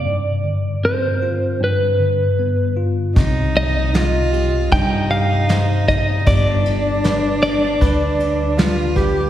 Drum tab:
RD |--------|xxxxxxxx|xxxxxxxx|
SD |--------|--o---o-|--o---o-|
BD |--------|o---o--o|o---o--o|